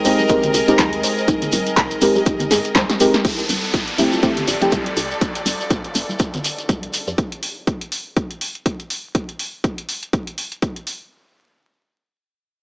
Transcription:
Already playing: ambient pad G#3 C4 A#4 D#5 G5, string machine G#4, string section A#4 D#5
0.05 fm bass G#1, synth stab G#3 C4 D#4 G4 A#4, open hi-hat, shekere
0.19 high conga, shekere
0.29 synth stab G#3 C4 D#4 G4 A#4, synth pluck D#4, kick, closed hi-hat, shekere
0.43 closed hi-hat, low conga, shekere
0.54 fm bass C2, open hi-hat, shekere
0.68 fm bass G#1, synth stab G#3 C4 D#4 G4 A#4, synth pluck G4, closed hi-hat, shekere
0.79 fm bass D#2, synth pluck D#4, kick, clap, closed hi-hat, high conga, shekere
0.93 closed hi-hat
1.03 fm bass D#1, synth pluck C5, open hi-hat, shekere
1.17 shekere
1.28 fm bass G#1, synth pluck D#4, kick, closed hi-hat, shekere
1.42 closed hi-hat, low conga, shekere
1.52 fm bass G#1, open hi-hat, high conga, shekere
1.66 closed hi-hat, shekere
1.77 fm bass C2, synth pluck D#4, kick, clap, closed hi-hat, shekere
1.91 closed hi-hat, shekere
2.01 fm bass G#1, synth stab G#3 C4 D#4 G4 A#4, open hi-hat, shekere
2.15 synth pluck G4, high conga, shekere
2.26 fm bass G#1, synth pluck D#4, kick, closed hi-hat, shekere
2.40 closed hi-hat, low conga, shekere
2.51 fm bass G#2, synth pluck G#4, snare, open hi-hat, shekere
2.65 closed hi-hat, shekere
2.75 fm bass D#2, synth pluck C5, kick, snare, clap, closed hi-hat, high conga, shekere
2.89 synth pluck G4, snare, closed hi-hat, shekere
3.00 synth stab G#3 C4 D#4 G4 A#4, open hi-hat, shekere
3.14 snare, closed hi-hat, shekere
3.24 fm bass F1, synth pluck E4, string section A4, kick, closed hi-hat, downlifter, shekere
3.39 closed hi-hat, shekere
3.49 fm bass F1, open hi-hat, high conga, shekere
3.61 string section D5, shekere
3.74 fm bass A1, synth pluck E4, kick, closed hi-hat, shekere
3.88 closed hi-hat
3.98 fm bass F1, synth stab F3 A3 C4 E4 G4, open hi-hat, shekere
4.12 synth pluck F4, high conga, shekere
4.23 synth stab F3 A3 C4 E4 G4, kick, closed hi-hat, shekere
4.37 closed hi-hat, low conga, shekere
4.48 fm bass A1, synth pluck C5, open hi-hat, shekere
4.61 fm bass F1, synth stab F3 A3 C4 E4 G4, closed hi-hat, shekere
4.71 fm bass C2, synth pluck E4, kick, closed hi-hat, high conga, shekere
4.86 closed hi-hat
4.97 fm bass C2, open hi-hat, shekere
5.11 shekere
5.21 fm bass F1, kick, closed hi-hat, shekere
5.35 closed hi-hat, shekere
5.46 fm bass F1, open hi-hat, high conga, shekere
5.60 shekere
5.70 fm bass A1, kick, closed hi-hat, shekere
5.85 closed hi-hat
5.95 fm bass F1, open hi-hat, shekere
6.09 high conga, shekere
6.19 fm bass F1, kick, closed hi-hat, shekere
6.34 closed hi-hat, low conga, shekere
6.44 open hi-hat, shekere
6.58 closed hi-hat, shekere
6.69 fm bass F1, kick, closed hi-hat, high conga, shekere
6.83 fm bass C2, closed hi-hat
6.93 open hi-hat, shekere
7.07 fm bass F2, shekere
7.18 kick, closed hi-hat
7.32 closed hi-hat
7.43 open hi-hat
7.67 kick, closed hi-hat
7.81 closed hi-hat
7.92 open hi-hat
8.16 kick, closed hi-hat
8.31 closed hi-hat
8.41 open hi-hat
8.55 closed hi-hat
8.66 kick, closed hi-hat
8.80 closed hi-hat
8.90 open hi-hat
9.15 kick, closed hi-hat
9.29 closed hi-hat
9.39 open hi-hat
9.64 kick, closed hi-hat
9.78 closed hi-hat
9.89 open hi-hat
10.03 closed hi-hat
10.13 kick, closed hi-hat
10.27 closed hi-hat
10.38 open hi-hat
10.52 closed hi-hat
10.62 kick, closed hi-hat
10.76 closed hi-hat
10.87 open hi-hat

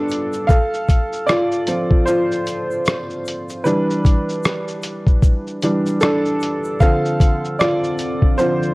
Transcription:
Already playing: upright piano G3 B3 D4 F4 G4 A4
0.09 closed hi-hat, shaker
0.12 shaker
0.33 shaker
0.47 upright piano A4 F5, kick, shaker
0.74 shaker
0.89 kick, closed hi-hat, shaker
1.13 shaker
1.27 upright piano F4 D5, cross-stick, shaker
1.52 shaker
1.67 upright piano F3 C4 F4, closed hi-hat, shaker
1.91 kick
2.06 upright piano F4 C5, shaker
2.32 shaker
2.47 closed hi-hat, shaker
2.71 shaker
2.85 cross-stick, shaker
3.10 shaker
3.25 closed hi-hat, shaker
3.28 shaker
3.49 shaker
3.64 upright piano E3 G3 D4 B4, shaker
3.90 shaker
4.05 kick, closed hi-hat, shaker
4.29 shaker
4.43 cross-stick, shaker
4.68 shaker
4.83 closed hi-hat, shaker
5.07 kick, shaker
5.22 kick, shaker
5.47 shaker
5.62 upright piano E3 G3 D4, closed hi-hat, shaker
5.86 shaker
6.01 upright piano D4 A4, cross-stick, shaker
6.26 shaker
6.40 closed hi-hat, shaker
6.43 shaker
6.64 shaker
6.80 ambient pad D3 F3 C4, upright piano D3 F3 C4 A4 F5, kick, shaker
7.05 shaker
7.20 kick, closed hi-hat, shaker
7.45 shaker
7.59 upright piano F4 D5, cross-stick, shaker
7.84 shaker
7.98 closed hi-hat, shaker
8.22 kick
8.38 upright piano D3 F3 C4 F4 C5, shaker
8.63 shaker

